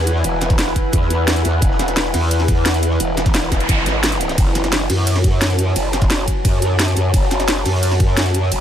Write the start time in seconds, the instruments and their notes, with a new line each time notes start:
Already playing: wobble bass E2, ambient pad E4 B4 F#5 G#5
0.07 closed hi-hat, ride
0.16 snare
0.24 wobble bass E1, closed hi-hat, ride
0.41 snare, closed hi-hat, ride
0.50 kick, snare, closed hi-hat
0.59 snare, closed hi-hat, ride
0.76 kick, closed hi-hat, ride
0.92 wobble bass E2, kick, closed hi-hat, ride
1.01 snare
1.10 snare, closed hi-hat, ride
1.28 snare, closed hi-hat, ride
1.36 closed hi-hat
1.45 wobble bass E2, snare, closed hi-hat, ride
1.61 wobble bass E1, kick, closed hi-hat, ride
1.71 snare
1.79 snare, closed hi-hat, ride
1.88 snare, closed hi-hat
1.96 snare, closed hi-hat, ride
2.14 wobble bass E2, snare, closed hi-hat, open hi-hat
2.23 snare
2.31 closed hi-hat, ride
2.40 snare
2.48 kick, closed hi-hat, ride
2.57 ride
2.66 snare, closed hi-hat, ride
2.74 snare, closed hi-hat
2.83 closed hi-hat, ride
2.91 snare
3.00 wobble bass E1, closed hi-hat, ride, noise sweep
3.17 snare, closed hi-hat, ride
3.26 kick, snare, closed hi-hat
3.34 snare, closed hi-hat, ride
3.43 ride
3.51 wobble bass E1, kick, snare, closed hi-hat
3.60 snare, closed hi-hat, ride
3.69 wobble bass G#1, kick, closed hi-hat, ride
3.77 snare
3.86 snare, closed hi-hat, ride
4.03 snare, closed hi-hat, ride
4.12 closed hi-hat
4.21 snare, closed hi-hat, ride
4.29 snare, closed hi-hat, ride
4.38 wobble bass F#1, ambient pad F#4 C#5 G#5 A5, kick, closed hi-hat, ride
4.47 snare
4.55 snare, closed hi-hat, ride
4.64 snare, closed hi-hat
4.72 snare, closed hi-hat, ride
4.89 wobble bass F#2, snare, closed hi-hat, open hi-hat
4.98 snare
5.07 closed hi-hat, ride
5.16 snare
5.24 kick, closed hi-hat, ride
5.32 ride
5.41 snare, closed hi-hat, ride
5.50 snare, closed hi-hat
5.58 closed hi-hat, ride
5.67 snare
5.76 wobble bass F#1, closed hi-hat, ride
5.93 snare, closed hi-hat, ride
6.02 kick, snare, closed hi-hat
6.10 snare, closed hi-hat, ride
6.27 kick, closed hi-hat, ride
6.45 wobble bass F#2, kick, closed hi-hat, ride
6.53 snare
6.62 snare, closed hi-hat, ride
6.79 snare, closed hi-hat, ride
6.88 closed hi-hat
6.96 wobble bass F#2, snare, closed hi-hat, ride
7.14 wobble bass F#1, kick, closed hi-hat, ride
7.23 snare
7.30 snare, closed hi-hat, ride
7.40 snare, closed hi-hat
7.48 snare, closed hi-hat, ride
7.65 wobble bass F#2, snare, closed hi-hat, open hi-hat
7.74 snare
7.83 closed hi-hat, ride
7.91 snare
8.00 kick, closed hi-hat, ride
8.09 ride
8.17 snare, closed hi-hat, ride
8.26 snare, closed hi-hat
8.34 closed hi-hat, ride
8.43 snare
8.52 wobble bass F#1, closed hi-hat, ride